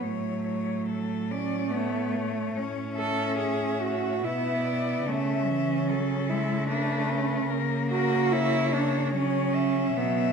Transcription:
cello
0.02 A2 F#3 A3 C#5
0.46 C#5
0.90 A4
1.31 C#4 D5
1.71 A3 B3 C#5
2.14 A3
2.55 A2 C#4 C#5
2.97 A4 E5
3.38 G#4
3.81 F#4
4.23 B2 B3 E4 E5
4.65 D5
5.07 C#3 A3 C#4 E5
5.48 E3
5.89 F#3 A4
6.29 G#3 E4
6.69 A3 D4 B4
7.10 C#4
7.49 C#3 A#3 A#4
7.89 F#4 A#4
8.32 E4 C#5
8.73 D4
9.14 F#3 C#4 C#5
9.55 E5
9.97 B2 F#3 B3

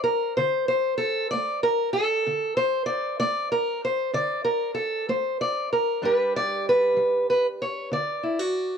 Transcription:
steel-string acoustic guitar
0.04 A#4
0.37 D3 C5
0.68 C5
0.98 A4
1.31 A3 D5
1.63 A#4
1.93 A4
2.27 D3
2.57 C5
2.86 D5
3.20 A3 D5
3.52 A#4
3.85 C5
4.13 D3 D5
4.45 A#4
4.75 A4
5.09 A3 C5
5.41 D5
5.73 A#4
6.02 G2 G3 D4 G4 B4
6.36 D5
6.69 B4
6.97 G3
7.30 B4
7.62 C#5
7.92 D3 D5
8.23 E4
8.39 F#4

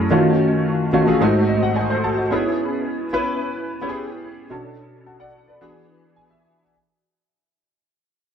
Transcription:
grand piano
Already playing: F#2 A3 C#4 E4 G#4
0.10 D#3 A3 C#4 F4 F#4
0.93 D#3 A3 C#4 F4 F#4
1.07 D#3 A3 C#4 F4 G#4
1.21 G#2 A3 C4 D#4 F#4
1.49 D#5
1.63 F#5
1.76 C5 D#5 G#5
1.90 A4 C5
2.04 F#4 A4 A5
2.17 D#4 F#4
2.31 B3 C#4 E4 G#4
3.13 B3 C#4 E4 B4
3.81 B3 C#4 E4 G4
3.89 G#4
4.50 B2 C#4 D4 F#4 A4
5.06 F#5 A5
5.20 D5 F#5
5.47 B4 D5
5.61 E3 B3 D4 F#4 G#4
6.16 G#5
6.30 E5

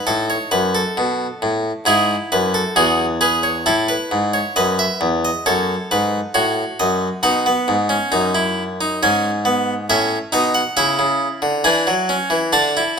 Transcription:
harpsichord
Already playing: D#4
0.07 A2 A4
0.30 C#5
0.51 F#2 B4
0.75 A4
0.97 B2
1.42 A2
1.85 G#2 E4 G#4
2.32 F#2 B4
2.54 A4
2.76 E2 F#4 G#4
3.21 G#4 B4
3.43 C#5
3.66 A2 E4 A4
3.89 B4
4.11 G#2
4.34 C#5
4.56 F#2 B4 D#5
4.79 E5
5.01 E2
5.25 D#5
5.46 F#2 A4 C#5
5.91 G#2 B4
6.34 A2 F#4 C#5
6.80 F#2 D#5
7.23 B2 D#4 F#5
7.46 B3
7.68 G#2
7.89 C#4
8.12 F#2 D#4
8.35 E4
8.81 D#4
9.03 G#2 C#4 G#5
9.45 B3
9.90 A2 C#4 E5
10.32 B2 D#4 D#5
10.54 F#5
10.77 C#3 E4 E5
10.99 C#3
11.42 D3
11.64 E3 D4 G#5
11.87 F#3
12.09 C#4
12.30 E3
12.53 D3 D4 A5
12.77 E4

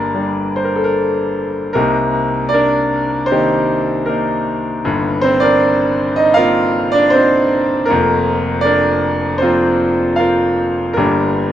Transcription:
grand piano
Already playing: G1 G2 A#3 D4 G4 A#4 D5
0.14 G3 A#3 D4
0.56 C5
0.65 A#4
0.76 A4
0.84 A#4
1.73 C2 C3 A#3 D#4 G4 A#4
2.49 D5
2.54 D4 A#4
3.26 C5
3.31 D#3 A#3 C4 D#4 G4
4.06 A#3 D#4 A#4
4.85 G1 G2
5.21 C4 C5
5.40 D4 A#4 D5
6.16 D#4 D#5
6.34 A#3 F4 A#4 F5
6.38 C4 D#4
6.92 D4 D5
7.10 C4 D#4 C5
7.86 A#3 F4 A#4
7.90 F1 F2
8.61 D4 A#4 D5
9.38 F4 C5
9.42 F3 A#3 C4
10.16 F4 A#4 F5
10.93 G1 G2 A#3 G4 A#4
10.98 D4

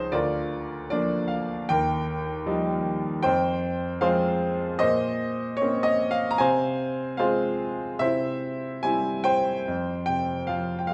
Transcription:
grand piano
Already playing: C#2 F3 C#4 D#4 G#4 C5 D#5
0.12 D2 F4 A#4 D5
0.90 F3 A#3 D4 D5
1.28 F5
1.69 D#2 A#4 G5
2.46 F3 G3 D#4
3.23 F2 C5 G5
4.01 F3 G#3 C4 G#4 C5 F5
4.79 A#2 C5 D#5
5.57 C#5
5.62 A#3 C4 C#4
5.83 D#5
6.11 F5
6.31 A#5
6.38 C3 C5 F5 G#5
7.17 G#3 C4 F4 G#4 C5 F5
7.99 C3 E4 C5 E5
8.83 G3 C4 E4 G#5
9.24 C5 G5
9.68 F2
10.06 C3 G5
10.47 F3 F5
10.79 G5
10.87 G#3 F5

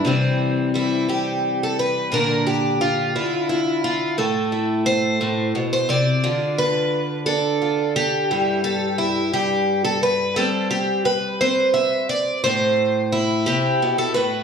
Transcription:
twelve-string acoustic guitar
0.05 C3 E3 G3 C4
0.74 G3 E4
1.08 G3 G4
1.63 A4
1.79 B4
2.12 A#2 D3 D4 A#4
2.47 G4
2.81 F4
3.16 D3 E4
3.49 E4
3.84 F4
4.18 A2 A4
4.52 E4
4.86 C5
5.21 A2
5.55 B2
5.73 C5
5.89 C3 D5
6.24 D3 F4
6.58 B4
7.26 D4 A4
7.62 F4
7.96 G4
8.31 G2 E4
8.64 A4
8.98 E4
9.33 G2 G4
9.85 A4
10.03 B4
10.36 G3 C4 A4
10.71 G4
11.05 B4
11.41 C4 C5
11.74 E5
12.09 D5
12.44 A2 C5
13.12 E4
13.46 C3 G4
13.82 B2
13.98 A4
14.14 A2 B4

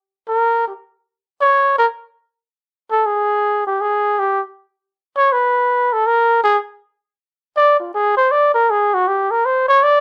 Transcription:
muted trumpet
0.28 A#4
0.67 G4
1.41 C#5
1.78 A#4
2.91 A4
3.06 G#4
3.67 G4
3.81 G#4
4.19 G4
5.17 C#5
5.32 B4
5.93 A4
6.07 A#4
6.44 G#4
7.57 D5
7.80 F4
7.94 G#4
8.17 C5
8.31 D5
8.54 A#4
8.70 G#4
8.94 F#4
9.08 G4
9.31 A#4
9.45 C5
9.68 C#5
9.83 D5

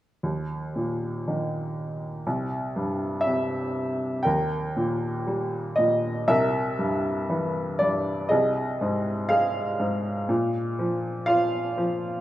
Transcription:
upright piano
0.23 D#2
0.76 A#2
1.28 D#3
2.27 C2
2.76 G2
3.21 E5
3.27 C3
4.23 D#2 A#4 G5
4.77 A#2
5.27 G3
5.76 A#2 D#5
6.28 C2 A#4 E5
6.79 G2
7.30 E3
7.79 G2 D5
8.29 C2 G#4 D#5
8.81 G#2
9.29 G#3 G#4 F5
9.80 G#2
10.29 A#2
10.79 F3
11.26 F4 F5
11.78 F3

